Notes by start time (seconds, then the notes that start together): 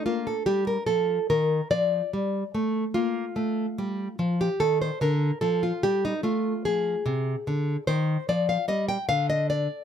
0.06 A#3 F4
0.27 A4
0.46 G3 G4
0.67 A#4
0.86 F3 A4
1.30 D#3 A#4
1.71 F3 D5
2.13 G3
2.54 A3
2.94 A#3 F4
3.36 A3
3.78 G3
4.19 F3
4.41 G4
4.60 D#3 A4
4.82 C5
5.01 D3 A#4
5.41 F3 A4
5.63 F4
5.83 G3 G4
6.05 D#4
6.23 A3 F4
6.65 F3 G#4
7.06 C3
7.47 D3
7.87 D#3 C5
8.29 F3 D5
8.49 F5
8.68 G3 D#5
8.89 G5
9.09 D3 F5
9.30 D#5
9.50 D5